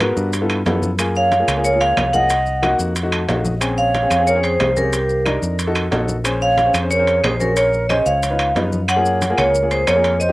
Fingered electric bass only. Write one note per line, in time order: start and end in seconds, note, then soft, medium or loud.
0.00 0.11 G#2 medium
0.17 0.62 G2 loud
0.66 1.42 F#2 loud
1.48 1.94 C#2 medium
1.97 2.74 C2 medium
2.79 3.25 F2 medium
3.29 4.05 A#1 medium
4.11 4.57 F2 medium
4.60 5.37 C2 medium
5.42 5.88 F2 medium
5.92 6.68 A#1 medium
6.74 7.20 F2 loud
7.24 8.00 A#1 loud
8.06 8.52 C#2 medium
8.55 9.32 F#2 medium
9.38 9.84 C#2 medium
9.88 10.32 F2 medium